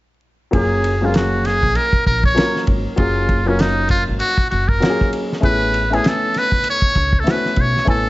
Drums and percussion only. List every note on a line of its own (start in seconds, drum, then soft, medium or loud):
0.53 kick medium
0.53 ride medium
0.84 ride soft
1.14 snare medium
1.14 hi-hat pedal soft
1.14 ride medium
1.45 snare soft
1.45 ride medium
1.63 kick medium
1.75 ride medium
1.93 kick medium
2.07 kick medium
2.07 ride soft
2.24 kick medium
2.24 ride soft
2.37 snare loud
2.37 hi-hat pedal soft
2.37 ride medium
2.56 snare soft
2.67 kick medium
2.67 ride medium
2.97 kick medium
2.97 ride medium
3.29 kick medium
3.29 ride soft
3.59 snare medium
3.59 hi-hat pedal soft
3.59 ride medium
3.89 kick medium
3.89 ride medium
4.20 ride medium
4.38 kick medium
4.51 ride soft
4.69 kick medium
4.82 snare loud
4.82 hi-hat pedal soft
4.82 ride medium
5.01 kick medium
5.01 snare soft
5.13 ride medium
5.33 snare soft
5.43 kick medium
5.43 ride medium
5.74 ride medium
5.93 ride soft
6.04 snare loud
6.04 hi-hat pedal soft
6.04 ride medium
6.34 snare soft
6.34 ride soft
6.52 kick medium
6.52 ride soft
6.64 ride medium
6.82 kick medium
6.95 kick medium
6.95 ride soft
7.13 kick medium
7.27 snare loud
7.27 hi-hat pedal medium
7.27 ride medium
7.45 snare soft
7.56 kick medium
7.56 ride medium
7.77 snare soft
7.87 kick medium
7.87 ride medium